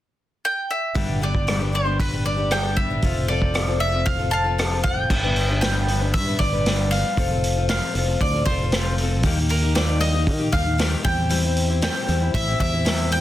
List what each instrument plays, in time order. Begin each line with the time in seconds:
0.45 mandolin G5
0.71 mandolin E5
0.94 fingered electric bass G1, steel-string acoustic guitar G2 D3 G3 B3 D4 G4, kick, open hi-hat
1.20 steel-string acoustic guitar G3 B3 D4 G4, mandolin D5
1.35 kick
1.47 steel-string acoustic guitar G2 D3 G3 B3 D4 G4, cross-stick, open hi-hat
1.60 steel-string acoustic guitar G3 B3 D4 G4
1.72 steel-string acoustic guitar G3 B3 D4 G4, mandolin C5
1.85 steel-string acoustic guitar G3 B3 D4 G4
2.00 mandolin B4, kick, open hi-hat
2.11 steel-string acoustic guitar G3 B3 D4 G4
2.24 steel-string acoustic guitar G3 B3 D4 G4, mandolin D5
2.37 steel-string acoustic guitar G3 B3 D4 G4
2.51 steel-string acoustic guitar G2 D3 G3 B3 D4 G4, mandolin G5, cross-stick, open hi-hat
2.77 steel-string acoustic guitar G3 B3 D4 G4, mandolin E5, kick
2.90 steel-string acoustic guitar G3 B3 D4 G4
3.02 fingered electric bass F1, steel-string acoustic guitar F3 C4 F4 A4, kick, open hi-hat
3.28 steel-string acoustic guitar F3 C4 F4 A4, mandolin D5
3.42 kick
3.54 steel-string acoustic guitar F3 C4 F4 A4, cross-stick, open hi-hat
3.67 steel-string acoustic guitar C4 F4 A4
3.79 steel-string acoustic guitar F3 C4 F4 A4, mandolin E5
3.92 steel-string acoustic guitar C4 F4 A4
4.06 mandolin F5, kick, open hi-hat
4.19 steel-string acoustic guitar C4 F4 A4
4.30 steel-string acoustic guitar F3 C4 F4 A4, mandolin F5 A5
4.44 steel-string acoustic guitar C4 F4 A4
4.58 steel-string acoustic guitar F3 C4 F4 A4, cross-stick, open hi-hat
4.83 steel-string acoustic guitar F3 C4 F4 A4, mandolin G5, kick
5.10 fingered electric bass G1, steel-string acoustic guitar G2 D3 G3 B3 D4 B4, kick, crash
5.24 steel-string acoustic guitar G3 B3 D4 B4
5.36 open hi-hat
5.50 steel-string acoustic guitar G3 B3 D4 B4
5.61 steel-string acoustic guitar G2 D3 G3 B3 D4 B4, mandolin G5, snare, open hi-hat
5.88 steel-string acoustic guitar G3 B3 D4 B4, open hi-hat
6.01 steel-string acoustic guitar G3 B3 D4 B4
6.14 fingered electric bass G2, mandolin E5, kick, open hi-hat
6.27 steel-string acoustic guitar G3 B3 D4 B4
6.39 fingered electric bass G1, steel-string acoustic guitar G3 B3 D4 B4, mandolin D5, kick, open hi-hat
6.53 steel-string acoustic guitar G3 B3 D4 B4
6.66 steel-string acoustic guitar G2 D3 G3 B3 D4 B4, snare, open hi-hat
6.91 steel-string acoustic guitar G3 B3 D4 B4, mandolin F5, open hi-hat
7.17 fingered electric bass F1, steel-string acoustic guitar F3 C4 F4 A4, kick, open hi-hat
7.31 steel-string acoustic guitar C4 F4 A4
7.44 open hi-hat
7.56 steel-string acoustic guitar C4 F4 A4
7.69 steel-string acoustic guitar F3 C4 F4 A4, mandolin F5, snare, open hi-hat
7.95 fingered electric bass F1, steel-string acoustic guitar F3 C4 F4 A4, open hi-hat
8.09 steel-string acoustic guitar C4 F4 A4
8.20 fingered electric bass D2, mandolin D5, kick, open hi-hat
8.34 steel-string acoustic guitar C4 F4 A4
8.45 fingered electric bass F1, steel-string acoustic guitar F3 C4, mandolin C5, kick, open hi-hat
8.50 steel-string acoustic guitar F4 A4
8.62 steel-string acoustic guitar C4 F4 A4
8.72 steel-string acoustic guitar F3 C4 F4 A4, snare, open hi-hat
8.98 steel-string acoustic guitar F3 C4 F4, open hi-hat
9.02 steel-string acoustic guitar A4
9.23 fingered electric bass D#2, steel-string acoustic guitar D#3 G3 A#3 D#4 G4, kick, open hi-hat
9.38 steel-string acoustic guitar A#3 D#4 G4
9.49 mandolin A#4, open hi-hat
9.62 steel-string acoustic guitar A#3 D#4 G4
9.75 steel-string acoustic guitar D#3 G3 A#3 D#4 G4, mandolin D5, snare, open hi-hat
10.00 steel-string acoustic guitar G3 A#3 D#4 G4, mandolin D#5, open hi-hat
10.14 steel-string acoustic guitar A#3 D#4 G4
10.27 fingered electric bass D#3, kick, open hi-hat
10.39 steel-string acoustic guitar A#3 D#4 G4
10.52 fingered electric bass D#2, steel-string acoustic guitar G3 A#3 D#4 G4, mandolin F5, kick, open hi-hat
10.65 steel-string acoustic guitar A#3 D#4 G4
10.78 steel-string acoustic guitar D#3 G3 A#3 D#4 G4, snare, open hi-hat
11.03 fingered electric bass E2, steel-string acoustic guitar G3 C4 E4 G4, mandolin G5, kick, open hi-hat
11.29 steel-string acoustic guitar E3 G3 C4 E4 G4, open hi-hat
11.43 steel-string acoustic guitar C4 E4 G4
11.57 open hi-hat
11.68 steel-string acoustic guitar C4 E4 G4
11.82 steel-string acoustic guitar E3 G3 C4 E4 G4, mandolin G5, snare, open hi-hat
12.07 fingered electric bass E2, steel-string acoustic guitar G3 C4 E4 G4, open hi-hat
12.20 steel-string acoustic guitar C4 E4 G4
12.34 fingered electric bass A1, mandolin E5, kick, open hi-hat
12.47 steel-string acoustic guitar C4 E4 G4
12.58 fingered electric bass E2, steel-string acoustic guitar G3 C4 E4 G4, mandolin E5, kick, open hi-hat
12.72 steel-string acoustic guitar C4 E4 G4
12.85 steel-string acoustic guitar E3 G3 C4 E4 G4, snare, open hi-hat
13.11 steel-string acoustic guitar G3 C4 E4 G4, mandolin G5, open hi-hat